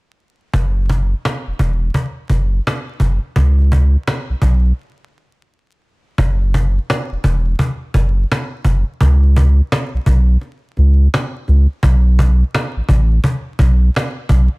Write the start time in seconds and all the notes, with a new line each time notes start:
0.54 F#1, cajon bass
0.90 cajon bass
1.25 cajon slap
1.47 E1
1.59 E1, cajon bass
1.94 cajon bass, cajon slap
2.30 F#1, cajon bass
2.67 cajon slap
3.00 F#1, cajon bass
3.36 C#2, cajon bass
3.59 cajon slap
3.72 cajon bass
4.08 cajon slap
4.29 B1
4.42 B1, cajon bass
6.18 F#1, cajon bass
6.54 cajon bass
6.90 cajon slap
7.11 E1
7.24 E1, cajon bass
7.59 cajon bass, cajon slap
7.94 F#1, cajon bass
8.32 cajon slap
8.64 F#1, cajon bass
9.01 C#2, cajon bass
9.23 cajon slap
9.37 cajon bass
9.72 cajon slap
9.94 B1
10.06 B1, cajon bass
10.41 cajon slap
10.77 C#2, cajon slap
11.14 cajon slap
11.48 C#2, cajon slap
11.83 B1, cajon bass
12.19 cajon bass
12.54 cajon slap
12.76 A1
12.89 A1, cajon bass
13.24 cajon bass, cajon slap
13.59 B1, cajon bass
13.96 cajon slap
14.29 B1, cajon bass